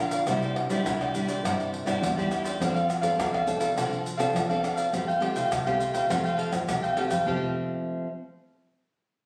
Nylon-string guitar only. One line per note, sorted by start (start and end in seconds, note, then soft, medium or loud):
0.00 0.25 D3 medium
0.00 0.23 D4 medium
0.00 0.23 F4 medium
0.00 0.24 A#4 medium
0.28 0.83 C3 medium
0.28 0.67 G3 medium
0.28 0.67 D4 medium
0.28 0.67 E4 medium
0.69 0.84 G3 medium
0.69 1.09 D4 medium
0.69 1.10 E4 medium
0.85 1.13 G3 medium
1.14 1.32 G3 medium
1.14 1.32 D4 medium
1.14 1.32 E4 medium
1.45 2.00 C3 medium
1.45 1.83 G3 medium
1.45 1.84 D4 medium
1.45 1.84 E4 medium
1.86 2.02 G3 medium
1.86 2.11 D4 medium
1.86 2.12 E4 medium
2.03 2.16 G3 medium
2.17 2.56 G3 medium
2.17 2.56 D4 medium
2.17 2.57 E4 medium
2.60 3.16 F3 medium
2.60 2.88 C4 medium
2.60 2.88 D4 medium
2.60 2.88 A4 medium
3.02 3.42 C4 medium
3.02 3.42 D4 medium
3.02 3.42 A4 medium
3.19 3.74 C3 medium
3.46 3.71 C4 soft
3.46 3.72 D4 medium
3.46 3.72 A4 medium
3.77 4.32 F3 medium
3.77 4.04 C4 soft
3.77 4.04 D4 medium
3.77 4.04 A4 medium
4.18 4.44 C4 medium
4.18 4.44 D4 medium
4.18 4.44 A4 medium
4.34 4.90 C3 medium
4.49 4.88 C4 medium
4.49 4.89 D4 medium
4.49 4.89 A4 medium
4.92 5.48 F3 soft
4.92 5.10 A3 soft
4.92 5.10 C4 soft
4.92 5.10 G4 medium
5.20 5.49 A3 medium
5.20 5.49 C4 medium
5.20 5.49 G4 medium
5.51 6.06 C3 soft
5.66 6.05 A3 medium
5.66 6.05 C4 medium
5.66 6.05 G4 medium
6.09 6.65 F3 medium
6.09 6.63 A3 soft
6.09 6.63 C4 medium
6.09 6.63 G4 medium
6.68 7.23 C3 medium
6.68 6.85 A3 medium
6.68 6.85 C4 medium
6.68 6.85 G4 medium
6.97 7.14 A3 medium
6.97 7.15 C4 medium
6.97 7.15 G4 medium
7.26 8.06 F3 medium
7.26 8.06 A3 medium
7.26 8.06 C4 medium
7.26 8.06 G4 medium